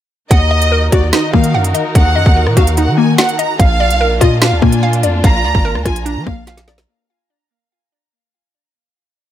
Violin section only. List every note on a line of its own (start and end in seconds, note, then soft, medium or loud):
0.31 0.89 D#5 loud
0.92 1.12 D5 medium
1.13 1.32 D#5 medium
1.34 1.53 F5 medium
1.95 2.53 F#5 loud
2.57 2.76 F5 medium
2.77 2.97 F#5 medium
2.98 3.17 G#5 medium
3.18 3.38 F#5 loud
3.39 3.59 A#5 medium
3.59 4.17 F5 loud
4.21 4.41 D#5 medium
4.42 4.61 F5 medium
4.62 4.82 G#5 medium
5.24 5.82 A#5 loud
5.86 6.05 G#5 medium
6.06 6.26 A#5 loud
6.27 6.46 F5 medium